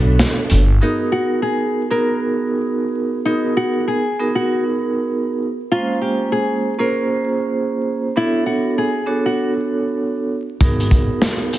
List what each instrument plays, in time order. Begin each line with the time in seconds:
Already playing: upright bass B1, string section A3 B3 D4, vibraphone B3 D4 F#4 A4 C#5
0.19 snare, closed hi-hat
0.50 upright bass G1, closed hi-hat
0.81 vibraphone B3 D#4 F#4 G#4 A#4, nylon-string guitar D#4
1.12 nylon-string guitar F#4
1.42 nylon-string guitar G#4
1.90 vibraphone B3 D#4 F#4 G#4 A#4, nylon-string guitar A#4
3.25 vibraphone B3 D#4 F#4 G#4 A#4, nylon-string guitar D#4
3.57 nylon-string guitar F#4
3.88 nylon-string guitar G#4
4.19 vibraphone B3 D#4 F#4 G#4 A#4
4.35 nylon-string guitar F#4
5.72 vibraphone G#3 A#3 C#4 F4 C5, nylon-string guitar F4
6.01 nylon-string guitar G4
6.32 nylon-string guitar G#4
6.79 vibraphone A#3 C#4 F4 G#4 C5, nylon-string guitar A#4
8.16 vibraphone B3 D4 F#4 A4 C#5, nylon-string guitar E4
8.46 nylon-string guitar F#4
8.78 nylon-string guitar G#4
9.06 vibraphone B3 D4 F#4 A4 C#5
9.26 nylon-string guitar F#4
10.61 upright bass G#1, vibraphone B3 D#4 F#4 G#4 A#4, kick, closed hi-hat
10.80 closed hi-hat
10.91 kick, closed hi-hat
11.22 snare, closed hi-hat
11.53 closed hi-hat